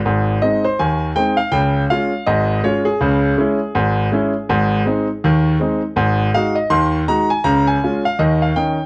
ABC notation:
X:1
M:2/4
L:1/16
Q:"Swing 16ths" 1/4=81
K:Ab
V:1 name="Grand piano"
z2 e c a2 g f | g2 f2 e2 d A- | A8- | A8 |
z2 f e c'2 b a | b a2 f e f g2 |]
V:2 name="Grand piano" clef=bass
[A,,,A,,]2 [A,CE]2 [E,,E,]2 [A,CE]2 | [D,,D,]2 [A,DF]2 [A,,,A,,]2 [A,DF]2 | [D,,D,]2 [A,D_F]2 [A,,,A,,]2 [A,DF]2 | [A,,,A,,]2 [A,CE]2 [E,,E,]2 [A,CE]2 |
[A,,,A,,]2 [A,E_G]2 [E,,E,]2 [A,EG]2 | [D,,D,]2 [A,DF]2 [E,,E,]2 [E,DE]2 |]